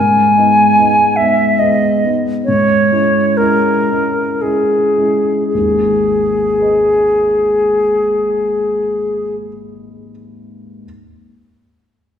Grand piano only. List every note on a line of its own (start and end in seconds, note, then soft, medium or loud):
0.00 0.35 G#2 soft
0.38 0.73 G#3 soft
0.38 0.73 B3 soft
0.38 0.73 D#4 soft
0.79 1.15 G#3 soft
0.79 1.15 B3 soft
0.79 1.15 D#4 soft
1.19 1.57 G#3 soft
1.19 1.58 B3 soft
1.19 1.58 D#4 soft
1.62 2.00 G#3 soft
1.62 2.00 B3 soft
1.62 2.00 D#4 soft
2.04 2.43 G#3 soft
2.04 2.43 B3 soft
2.04 2.43 D#4 soft
2.48 2.91 G#2 soft
2.91 3.35 G#3 soft
2.91 3.35 C#4 soft
2.91 3.35 E4 soft
3.40 3.85 G#3 soft
3.40 3.85 C#4 soft
3.40 3.85 E4 soft
3.90 4.38 G#3 soft
3.90 4.38 C#4 soft
3.90 4.38 E4 soft
4.42 4.93 G#3 soft
4.42 4.94 C#4 soft
4.42 4.94 E4 soft
4.98 5.48 G#3 soft
4.98 5.48 C#4 soft
4.98 5.48 E4 soft
5.54 9.48 G#1 soft
5.54 9.47 D#2 soft
6.58 10.09 G#4 soft
6.58 10.10 B4 soft
6.58 10.10 D#5 soft